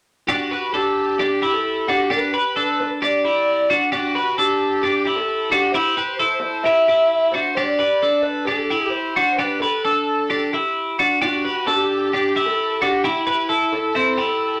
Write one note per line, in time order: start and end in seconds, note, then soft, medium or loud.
0.28 0.52 D4 medium
0.28 0.73 F#4 medium
0.28 0.51 G4 loud
0.51 0.74 G4 medium
0.51 0.73 B4 medium
0.73 1.17 D4 medium
0.73 1.18 G4 medium
0.73 1.17 A4 medium
1.19 1.42 D4 medium
1.19 1.55 G4 medium
1.19 1.41 G4 medium
1.42 1.85 E4 medium
1.42 1.85 G4 medium
1.53 1.89 A4 medium
1.88 2.10 D4 medium
1.88 2.10 F#4 medium
1.88 2.11 G4 medium
2.10 2.34 D4 medium
2.10 2.32 G4 loud
2.10 2.79 B4 medium
2.34 2.56 G4 soft
2.34 2.56 B4 medium
2.56 2.99 D4 medium
2.56 2.99 A4 medium
2.80 2.86 B4 medium
3.02 3.25 D4 medium
3.02 3.23 G4 medium
3.02 3.67 D5 medium
3.25 3.68 E4 medium
3.25 3.67 G4 medium
3.70 3.92 D4 medium
3.70 3.92 F#4 medium
3.92 4.16 D4 medium
3.92 4.38 F#4 medium
3.92 4.15 G4 loud
4.15 4.38 G4 medium
4.15 4.38 B4 medium
4.38 4.81 D4 soft
4.38 4.81 G4 medium
4.38 4.81 A4 medium
4.83 5.07 D4 medium
4.83 5.18 G4 medium
4.83 5.04 G4 medium
5.06 5.49 E4 medium
5.06 5.49 G4 medium
5.16 5.52 A4 medium
5.50 5.75 D4 medium
5.50 5.74 F#4 medium
5.50 5.75 G4 medium
5.72 5.97 E4 medium
5.72 5.97 G4 medium
5.72 6.39 C5 loud
5.97 6.20 G4 medium
5.97 6.19 B4 medium
6.19 6.63 E4 soft
6.19 6.63 A4 medium
6.41 6.65 C5 medium
6.63 6.88 E4 medium
6.63 6.87 G4 medium
6.63 7.35 E5 medium
6.88 7.32 E4 medium
6.88 7.31 G4 medium
7.32 7.56 D4 medium
7.32 7.57 F#4 medium
7.32 7.56 C5 medium
7.55 7.80 D4 medium
7.55 7.79 G4 medium
7.55 8.20 D5 medium
7.79 8.03 G4 medium
7.79 8.02 B4 medium
8.02 8.45 D4 medium
8.02 8.45 A4 medium
8.22 8.46 B4 medium
8.46 8.71 D4 medium
8.46 8.69 G4 medium
8.46 8.91 A4 medium
8.70 9.14 E4 medium
8.70 9.13 G4 medium
8.91 9.37 C5 medium
9.16 9.38 D4 medium
9.16 9.38 F#4 medium
9.37 9.62 D4 medium
9.37 9.62 G4 loud
9.37 9.60 B4 medium
9.60 9.85 G4 medium
9.60 10.48 A4 medium
9.60 9.84 B4 medium
9.85 10.28 D4 soft
9.85 10.27 A4 medium
10.30 10.53 D4 medium
10.30 10.52 G4 medium
10.53 10.96 E4 medium
10.53 10.96 G4 medium
10.99 11.21 D4 medium
10.99 11.21 F#4 medium
11.22 11.45 D4 medium
11.22 11.66 F#4 medium
11.22 11.44 G4 loud
11.45 11.67 G4 medium
11.45 11.67 B4 medium
11.67 12.10 D4 medium
11.67 12.12 G4 medium
11.67 12.10 A4 medium
12.13 12.36 D4 medium
12.13 12.45 G4 medium
12.13 12.35 G4 medium
12.36 12.79 E4 medium
12.36 12.78 G4 medium
12.47 12.82 A4 loud
12.82 13.04 D4 medium
12.82 13.04 F#4 medium
12.82 13.05 G4 medium
13.04 13.74 E4 medium
13.04 13.26 E4 medium
13.04 13.27 G4 loud
13.27 13.49 G4 medium
13.27 13.49 B4 medium
13.49 13.92 E4 soft
13.49 13.92 A4 medium
13.73 13.94 A4 medium
13.95 14.18 C4 medium
13.95 14.17 E4 medium
13.95 14.59 A4 medium
14.18 14.60 E4 soft
14.18 14.60 G4 medium